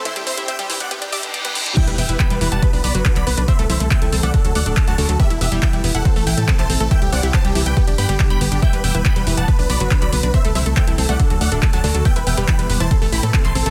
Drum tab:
CC |----------------|x---------------|----------------|----------------|
HH |xxoxxxoxxxoxxxox|xxoxxxoxxooxxxox|xxoxxxoxxxoxxxox|xxoxxxoxxooxxxox|
CP |----------------|----x-------xx--|----x-------x---|----x-------xx--|
BD |----------------|o---o---o---o---|o---o---o---o---|o---o---o---o---|

CC |----------------|----------------|----------------|----------------|
HH |xxoxxxoxxxoxxxox|xxoxxxoxxooxxxox|xxoxxxoxxxoxxxox|xxoxxxoxxooxxxox|
CP |----x-------x---|----x-------xx--|----x-------x---|----x-------xx--|
BD |o---o---o---o---|o---o---o---o---|o---o---o---o---|o---o---o---o---|